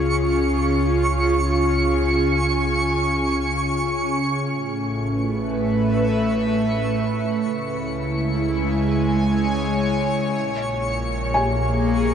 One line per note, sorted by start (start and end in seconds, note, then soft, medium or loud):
0.00 4.41 C#2 medium
0.00 4.47 C#3 medium
0.00 8.59 C#4 medium
0.00 4.47 F4 medium
0.00 5.64 G#4 medium
0.00 4.45 C#6 medium
1.23 5.65 G#5 medium
4.46 7.36 A1 medium
4.46 7.42 A2 medium
4.46 12.14 C#6 medium
4.69 7.42 A3 medium
5.01 8.60 B4 medium
5.11 8.59 E5 medium
7.41 10.31 C#2 medium
7.41 10.37 C#3 medium
7.64 10.36 E4 medium
7.99 10.36 G#3 medium
8.35 11.54 G#5 medium
8.73 12.14 C#5 medium
10.35 12.14 A#1 medium
10.35 12.14 A#2 medium
10.96 12.14 A#3 medium
11.34 12.14 G#5 medium
11.39 12.14 G#4 medium
11.68 12.14 A#4 medium